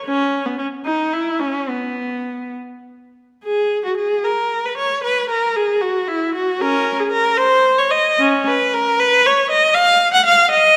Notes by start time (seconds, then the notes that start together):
0.05 C#4
0.46 B3
0.58 C#4
0.85 D#4
1.13 E4
1.39 C#4
1.69 B3
3.44 G#4
3.85 F#4
3.97 G#4
4.24 A#4
4.65 B4
4.77 C#5
5.04 B4
5.29 A#4
5.56 G#4
5.82 F#4
6.08 E4
6.34 F#4
6.60 C#4 A#4
7.00 G#4
7.12 A#4
7.37 C5
7.78 C#5
7.91 D#5
8.20 C#4
8.47 B4
8.74 A#4
8.99 B4
9.26 C#5
9.50 D#5
9.74 F5
10.13 F#5
10.26 F5
10.51 D#5